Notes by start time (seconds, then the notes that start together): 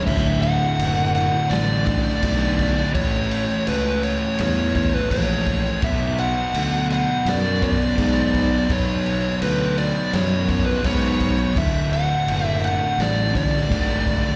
0.04 D1 D2 A2 D3 E5, kick, crash
0.42 F#5, crash
0.79 F#1, crash
1.15 F#5, crash
1.50 A1 D5, snare, crash
1.85 D2 A2 D3 D5, kick, crash
2.08 snare
2.22 B1 D2 A2 D3, kick, crash
2.59 kick, crash
2.92 A1 A2 E3 A3 C#5, kick, crash
3.31 crash
3.67 C#2 B4, crash
4.03 C#5, crash
4.39 E2 C#5, snare, crash
4.73 A2 E3 A3 C#5, kick, crash
4.94 B4, snare
5.09 A#1 A2 E3 A3 C#5, kick, crash
5.46 kick, crash
5.81 B1 B2 F#3 B3 E5, kick, crash
6.18 F#5, crash
6.54 D2, crash
6.90 F#5, crash
7.25 F#2 D5, snare, crash
7.61 B2 F#3 B3 D5, kick, crash
7.96 G#2 B2 F#3 B3, kick, crash
8.34 kick, crash
8.68 B1 B2 F#3 B3 C#5, kick, crash
9.06 crash
9.42 D2 B4, crash
9.78 D5, crash
10.13 F#2 C#5, snare, crash
10.46 B2 F#3 B3 C#5, kick, crash
10.66 B4, snare
10.83 G#2 B2 F#3 B3 C#5, kick, crash
11.20 kick, crash
11.54 D1 D2 A2 D3 E5, kick, crash
11.93 F#5, crash
12.27 F#1, crash
12.47 E5
12.64 F#5, crash
12.98 A1 D5, snare, crash
13.33 D2 A2 D3 D5, kick, crash
13.55 snare
13.68 G#1 D2 A2 D3, kick, crash
14.06 kick, crash